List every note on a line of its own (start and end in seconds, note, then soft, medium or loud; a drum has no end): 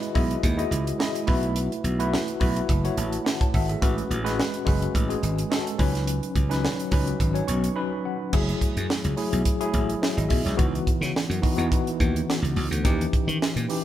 0.00 0.14 G#3 medium
0.00 0.15 E4 medium
0.00 0.15 F#4 medium
0.00 0.11 B4 medium
0.00 0.15 D#5 loud
0.00 closed hi-hat soft
0.14 0.35 B1 medium
0.14 0.53 G#3 medium
0.14 0.53 E4 medium
0.14 0.53 F#4 medium
0.14 0.53 D#5 medium
0.14 kick medium
0.14 open hi-hat medium
0.31 closed hi-hat medium
0.43 0.63 D#2 loud
0.43 kick medium
0.43 closed hi-hat medium
0.57 0.95 G#3 medium
0.57 0.95 E4 medium
0.57 0.95 F#4 medium
0.57 0.95 D#5 medium
0.57 closed hi-hat soft
0.71 0.91 C#2 medium
0.71 closed hi-hat medium
0.87 closed hi-hat medium
0.98 1.27 G#3 medium
0.98 1.26 E4 medium
0.98 1.26 F#4 medium
0.98 1.28 D#5 medium
0.98 snare loud
1.15 closed hi-hat medium
1.26 1.67 B1 medium
1.26 1.90 A3 loud
1.26 1.90 E4 medium
1.26 1.90 F#4 medium
1.26 1.91 B4 medium
1.26 kick loud
1.26 open hi-hat medium
1.43 closed hi-hat soft
1.56 closed hi-hat medium
1.72 closed hi-hat soft
1.84 2.15 B1 medium
1.84 closed hi-hat medium
1.99 2.36 A3 medium
1.99 2.36 E4 medium
1.99 2.36 F#4 medium
1.99 2.37 B4 medium
1.99 closed hi-hat soft
2.14 snare loud
2.28 closed hi-hat soft
2.40 2.60 B1 medium
2.40 2.78 A3 medium
2.40 2.79 E4 medium
2.40 2.79 F#4 medium
2.40 2.79 B4 medium
2.40 kick medium
2.40 open hi-hat medium
2.56 closed hi-hat medium
2.69 2.89 F#1 loud
2.69 kick medium
2.69 closed hi-hat medium
2.84 3.21 A3 medium
2.84 3.21 E4 medium
2.84 3.21 F#4 medium
2.84 3.21 C#5 medium
2.84 closed hi-hat soft
2.97 3.17 A1 medium
2.97 3.24 A5 medium
2.97 closed hi-hat medium
3.13 closed hi-hat medium
3.25 3.51 F#5 medium
3.25 snare loud
3.41 3.53 C#5 medium
3.41 3.53 A5 medium
3.41 kick loud
3.41 closed hi-hat soft
3.54 3.74 G#1 loud
3.54 3.69 A4 medium
3.54 3.68 E5 medium
3.54 3.69 F#5 medium
3.54 kick medium
3.54 open hi-hat medium
3.69 3.97 G#4 medium
3.69 3.96 E5 medium
3.69 closed hi-hat medium
3.81 4.02 A1 loud
3.81 4.20 G#3 medium
3.81 4.20 C#4 medium
3.81 4.20 F#4 medium
3.81 4.20 B4 medium
3.81 kick loud
3.81 closed hi-hat medium
3.98 closed hi-hat soft
4.10 4.41 A1 medium
4.10 closed hi-hat medium
4.24 4.61 G#3 medium
4.24 4.61 C#4 medium
4.24 4.62 F#4 medium
4.24 4.62 B4 loud
4.24 snare soft
4.24 closed hi-hat soft
4.40 snare loud
4.54 closed hi-hat soft
4.65 4.86 F#1 medium
4.65 5.04 G#3 medium
4.65 5.04 C#4 medium
4.65 5.04 F#4 medium
4.65 5.04 B4 medium
4.65 kick loud
4.65 open hi-hat medium
4.82 closed hi-hat medium
4.95 5.15 A1 loud
4.95 kick medium
4.95 closed hi-hat medium
5.09 5.46 G#3 medium
5.09 5.46 C#4 medium
5.09 5.46 F#4 medium
5.09 5.47 G#4 medium
5.09 closed hi-hat soft
5.23 5.43 G#1 medium
5.23 closed hi-hat medium
5.38 closed hi-hat medium
5.50 5.79 G#3 medium
5.50 5.77 C#4 medium
5.50 5.80 F#4 medium
5.50 5.80 A4 medium
5.50 snare loud
5.67 closed hi-hat medium
5.78 6.19 C#2 loud
5.78 6.42 F#3 medium
5.78 6.42 C#4 medium
5.78 6.42 D#4 medium
5.78 6.42 B4 medium
5.78 kick medium
5.78 open hi-hat medium
5.95 snare soft
5.95 closed hi-hat medium
6.07 closed hi-hat medium
6.23 closed hi-hat soft
6.35 6.66 C#2 medium
6.35 kick medium
6.35 closed hi-hat medium
6.49 6.87 F#3 medium
6.49 6.87 C#4 medium
6.49 6.87 D#4 medium
6.49 6.88 B4 medium
6.49 snare soft
6.49 closed hi-hat medium
6.65 snare loud
6.79 closed hi-hat soft
6.91 7.12 C#2 medium
6.91 7.30 F#3 medium
6.91 7.30 C#4 medium
6.91 7.30 D#4 medium
6.91 7.31 B4 medium
6.91 kick loud
6.91 open hi-hat medium
7.07 closed hi-hat medium
7.20 7.40 G#1 loud
7.20 kick medium
7.20 closed hi-hat medium
7.34 7.71 F#3 medium
7.34 7.72 C#4 medium
7.34 7.72 D#4 medium
7.34 7.72 C#5 loud
7.34 closed hi-hat soft
7.48 7.68 B1 loud
7.48 7.74 C#6 medium
7.48 closed hi-hat medium
7.64 closed hi-hat medium
7.75 8.27 F#3 medium
7.75 8.27 C#4 medium
7.75 8.27 D#4 medium
7.75 8.27 B4 medium
7.75 8.03 B5 medium
8.05 8.32 F#5 medium
8.33 8.53 F#1 loud
8.33 9.09 F#3 medium
8.33 9.09 A3 medium
8.33 9.09 E4 medium
8.33 9.09 G#4 loud
8.33 kick loud
8.33 crash medium
8.49 closed hi-hat soft
8.61 kick medium
8.61 closed hi-hat medium
8.77 8.86 F#2 medium
8.77 closed hi-hat medium
8.90 snare loud
9.04 9.14 C#2 medium
9.04 closed hi-hat soft
9.17 9.56 F#3 medium
9.17 9.56 A3 medium
9.17 9.56 E4 medium
9.17 9.56 G#4 medium
9.17 open hi-hat medium
9.33 9.42 B1 loud
9.33 closed hi-hat medium
9.45 kick medium
9.45 closed hi-hat medium
9.60 10.48 F#3 medium
9.60 10.48 A3 medium
9.60 10.01 E4 medium
9.60 10.02 G#4 medium
9.60 closed hi-hat soft
9.74 9.94 A1 medium
9.74 kick medium
9.74 closed hi-hat medium
9.89 closed hi-hat soft
10.02 10.17 E4 medium
10.02 10.17 C#5 medium
10.02 snare loud
10.17 10.27 G#1 medium
10.17 10.30 F#4 medium
10.17 10.30 D#5 medium
10.17 closed hi-hat medium
10.29 10.41 B1 medium
10.29 10.45 G#4 medium
10.29 10.44 E5 medium
10.29 kick medium
10.29 open hi-hat medium
10.45 10.55 C2 medium
10.45 10.72 E4 medium
10.45 10.72 C#5 medium
10.45 snare soft
10.45 closed hi-hat soft
10.57 10.79 C#2 loud
10.57 11.33 E3 loud
10.57 11.33 B3 medium
10.57 11.34 D#4 medium
10.57 11.34 F#4 loud
10.57 kick loud
10.57 closed hi-hat medium
10.75 closed hi-hat soft
10.87 kick medium
10.87 closed hi-hat medium
11.01 11.11 C#3 loud
11.01 snare soft
11.01 closed hi-hat medium
11.16 snare loud
11.30 11.39 F#2 medium
11.30 closed hi-hat medium
11.42 11.56 E3 medium
11.42 11.56 B3 medium
11.42 11.56 D#4 medium
11.42 11.57 F#4 medium
11.42 kick medium
11.42 open hi-hat medium
11.57 11.67 E2 medium
11.57 12.56 E3 medium
11.57 12.57 B3 medium
11.57 12.57 D#4 medium
11.57 12.57 F#4 medium
11.57 closed hi-hat medium
11.72 kick loud
11.72 closed hi-hat medium
11.87 closed hi-hat medium
12.00 12.20 D#2 medium
12.00 kick medium
12.00 closed hi-hat medium
12.16 closed hi-hat medium
12.30 snare loud
12.42 12.52 C#2 medium
12.42 closed hi-hat soft
12.56 12.67 C#2 loud
12.56 open hi-hat medium
12.71 12.85 D2 medium
12.71 closed hi-hat medium
12.84 13.05 D#2 loud
12.84 13.60 E3 medium
12.84 13.60 C#4 medium
12.84 13.60 D#4 medium
12.84 13.61 G4 medium
12.84 kick loud
12.84 closed hi-hat medium
13.01 closed hi-hat medium
13.13 kick loud
13.13 closed hi-hat medium
13.28 13.37 D#3 loud
13.28 closed hi-hat medium
13.42 snare loud
13.56 13.65 A#2 loud
13.56 closed hi-hat medium
13.68 13.84 E3 medium
13.68 13.84 C#4 medium
13.68 13.84 D#4 medium
13.68 13.84 G4 medium
13.68 open hi-hat medium